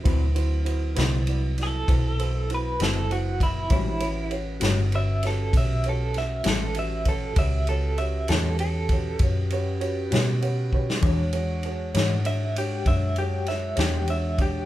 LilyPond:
<<
  \new Staff \with { instrumentName = "Clean electric guitar" } { \time 12/8 \key a \mixolydian \tempo 4. = 66 r2 r8 a'4. b'8 a'8 fis'8 e'8 | e'4 r4 e''8 a'8 e''8 a'8 e''8 a'8 e''8 a'8 | e''8 a'8 e''8 a'8 a'4 r2. | r2 e''8 g'8 e''8 g'8 e''8 g'8 e''8 g'8 | }
  \new Staff \with { instrumentName = "Upright piano" } { \time 12/8 \key a \mixolydian <e' fis' b' c''>8 <e' fis' b' c''>8 <e' fis' b' c''>8 <e' fis' b' c''>8 <e' fis' b' d''>8 <e' fis' b' d''>8 <e' fis' b' c''>8 <e' fis' b' c''>8 <e' fis' b' c''>8 <e' fis' b' c''>8 <e' fis' b' c''>8 <e' fis' b' d''>8 | <fis' g' b' cis''>8 <fis' g' b' cis''>8 <fis' g' b' cis''>8 <fis' g' b' cis''>8 <fis' g' b' cis''>8 <fis' g' b' cis''>8 <fis' g' b' cis''>8 <fis' g' b' cis''>8 <fis' g' b' e''>8 <fis' g' b' e''>8 <fis' g' b' e''>8 <fis' g' b' cis''>8 | <fis' g' b' cis''>8 <fis' g' b' cis''>8 <fis' g' b' cis''>8 <fis' g' b' cis''>8 <fis' g' b' cis''>8 <fis' g' b' cis''>8 <fis' g' b' cis''>8 <fis' g' b' cis''>8 <fis' g' b' cis''>8 <fis' g' b' cis''>8 <fis' g' b' cis'' fis''>8 <fis' g' b' cis''>8 | <d' fis' gis' cis''>8 <d' fis' gis' cis''>8 <d' fis' gis' cis''>8 <d' fis' gis' cis''>8 <d' fis' gis' cis''>8 <d' fis' gis' cis''>8 <d' fis' gis' cis''>8 <d' fis' gis' cis''>8 <d' fis' gis' cis''>8 <d' fis' gis' cis''>8 <d' fis' gis' cis''>8 <d' fis' gis' d''>8 | }
  \new Staff \with { instrumentName = "Tonewheel organ" } { \time 12/8 \key a \mixolydian <fis c' e' b'>1. | <gis d' g' c''>8 <g cis' fis' b'>1~ <g cis' fis' b'>4. | <cis' fis' g' b'>1. | <gis d' cis'' fis''>1. | }
  \new Staff \with { instrumentName = "Clean electric guitar" } { \time 12/8 \key a \mixolydian <d c' fis' b'>8 r4 <d c' fis' b'>8 r2 r8 <d c' fis' b'>8 r4 | <a, g cis' fis'>8 r4 <a, g cis' fis'>8 r2 r8 <a, g cis' fis'>8 r4 | r4. <a, g cis' fis'>8 r2 r8 <a, g cis' fis'>8 r4 | <e d' gis' cis''>8 r4 <e d' gis' cis''>8 r2 r8 <e d' gis' cis''>8 r4 | }
  \new Staff \with { instrumentName = "Fingered electric bass" } { \clef bass \time 12/8 \key a \mixolydian d,4. c,4. b,,4. fis,,4. | a,,4. g,,4. b,,4. a,,4. | cis,4. e,4. fis,4. b,4. | e,4. gis,4. fis,4. e,4. | }
  \new DrumStaff \with { instrumentName = "Drums" } \drummode { \time 12/8 <bd cymr>8 cymr8 cymr8 <cymr sn>8 cymr8 <cymr sn>8 <bd cymr>8 cymr8 cymr8 <cymr sn>8 cymr8 <bd cymr>8 | <bd cymr>8 cymr8 cymr8 <cymr sn>8 cymr8 <cymr sn>8 <bd cymr>8 cymr8 <cymr sn>8 <cymr sn>8 cymr8 <bd cymr>8 | <bd cymr>8 cymr8 cymr8 <cymr sn>8 cymr8 <bd cymr>8 <bd cymr>8 cymr8 cymr8 <cymr sn>8 cymr8 bd16 sn16 | <bd cymr>8 cymr8 cymr8 <cymr sn>8 cymr8 cymr8 <bd cymr>8 cymr8 <cymr sn>8 <cymr sn>8 cymr8 <bd cymr>8 | }
>>